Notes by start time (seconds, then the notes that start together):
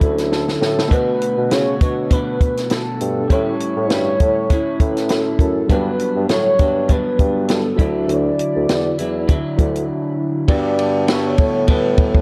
Already playing: D3 F#3 C#4 D4 E4 A4 C#5
0.01 D2, kick, closed hi-hat
0.18 snare, closed hi-hat
0.32 A4, snare
0.48 snare
0.61 A2, snare
0.79 snare
0.88 B2 A3 B3 D4 F#4 B4, kick, closed hi-hat
0.92 F#4 B4
1.22 closed hi-hat
1.38 B2
1.50 B2 C#3 A3 F#4 C#5, snare, closed hi-hat
1.81 B2 A3 D4 F#4, kick, closed hi-hat
2.10 B2 A3 D4 F#4 B4, kick, closed hi-hat
2.41 kick, closed hi-hat
2.57 snare, closed hi-hat
2.70 A4, snare, closed hi-hat
3.01 G2, closed hi-hat
3.28 A2 G3 C#4 E4 G4 C#5, kick, closed hi-hat
3.33 A4
3.60 closed hi-hat
3.76 A2
3.90 G2 A2 G3 C#4 E4, snare, closed hi-hat
4.20 A2, kick, closed hi-hat
4.50 A2 C#4 E4, kick, closed hi-hat
4.80 A2 B4, kick, closed hi-hat
4.97 snare, closed hi-hat
5.09 A4, snare, closed hi-hat
5.39 F#2 A4, kick, closed hi-hat
5.67 G2 F#3 G3 B3 D4 F#4, kick, closed hi-hat
5.71 D4 B4
5.99 closed hi-hat
6.16 G2
6.29 G2 A2 F#3 B3 D4 C#5, snare, closed hi-hat
6.58 G2 F#3 B3 D4, kick, closed hi-hat
6.88 G2 F#3 B3 D4 B4, kick, closed hi-hat
7.19 G2, kick, closed hi-hat
7.49 A4, snare, closed hi-hat
7.76 D2 F#3 D4 E4, kick, closed hi-hat
7.81 D3 E5
8.08 D2 D5, closed hi-hat
8.39 closed hi-hat
8.55 D2
8.69 E2, snare, closed hi-hat
8.98 E2 F#3 E4, closed hi-hat
9.28 D3 F#3 E4, kick, closed hi-hat
9.57 D2 F#3 D4 E4 D5, kick, closed hi-hat
9.75 closed hi-hat
10.48 G2 G3 B3 F#4 A4 D5, kick, ride
10.79 ride
11.07 G3 B3 F#4 A4 C#5, snare, ride
11.38 A2, kick, ride
11.67 G3 B3 F#4 A4 B4, kick, ride
11.98 kick, ride
12.15 kick